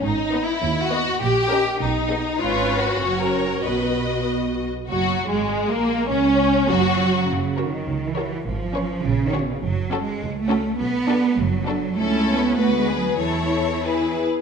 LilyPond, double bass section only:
\new Staff \with { instrumentName = "Double bass section" } { \clef bass \time 2/4 \key fis \mixolydian \tempo 4 = 101 gis,,4 dis,4 | ais,,4 b,,4 | gis,,4 fis,,4 | b,,4. r8 |
\tuplet 3/2 { fis,,4 gis,,8~ gis,,8 ais,,4 } | cis,4 fis,,4 | fis,,4 cis,4 | gis,,4 ais,,4 |
\key a \major fis,,4 cis,4 | b,,4 fis,,4 | cis,4 d,4 | e,4. r8 | }